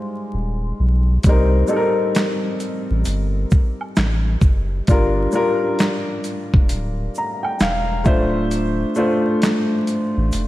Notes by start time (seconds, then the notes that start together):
Already playing: G3 G#3 D#4 F4 C5
0.34 D#1
0.79 B1
1.23 C2 G3 C4, kick, closed hi-hat, shaker
1.28 D#4 A#4
1.67 G3 C4 D#4 A4, shaker
1.76 A#4
2.15 snare, clap, closed hi-hat, shaker
2.60 closed hi-hat, shaker
2.90 A1
3.05 G1, closed hi-hat, shaker
3.51 kick, shaker
3.81 high woodblock
3.96 A1, snare, clap, closed hi-hat, shaker
4.41 F#1, kick, shaker
4.87 G1 G3 D4 F4 A#4, kick, closed hi-hat, shaker
5.32 G3 D4 F4 A#4, shaker
5.79 snare, clap, closed hi-hat, shaker
6.24 closed hi-hat, shaker
6.54 E1, kick
6.69 D1, closed hi-hat, shaker
7.15 A#5, shaker
7.43 G5, high woodblock
7.60 E1 F5, snare, clap, closed hi-hat, shaker
8.04 D1 A3 D4 F4 C5 E5, kick, shaker
8.51 closed hi-hat, shaker
8.95 A3 D4 F4 C5, shaker
9.42 snare, clap, closed hi-hat, shaker
9.87 closed hi-hat, shaker
10.17 A1
10.32 F1, closed hi-hat, shaker